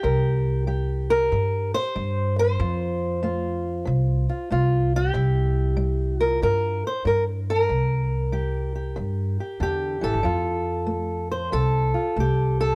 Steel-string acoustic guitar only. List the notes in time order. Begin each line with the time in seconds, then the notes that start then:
Already playing: G4
0.03 C3 A#4
0.67 G3 G4
1.10 A#4
1.32 C3
1.74 C5
1.95 G3
2.39 C5
2.60 F3 F4
3.23 A3 F4
3.85 C3
4.29 F4
4.50 A3 F4
4.96 G4
5.14 C3 E4
5.77 G3
6.20 A#4
6.25 F4
6.42 C3 A#4
6.87 C5
7.05 G3 A#4
7.50 A#4
7.69 C3
8.32 G3 G4
8.75 G4
8.96 C3
9.40 G4
9.60 D3 G4
10.01 E3 A4
10.23 F3 F4
10.87 A3
11.31 C5
11.52 C3 A4
11.94 F4
12.17 A3 G4
12.61 A4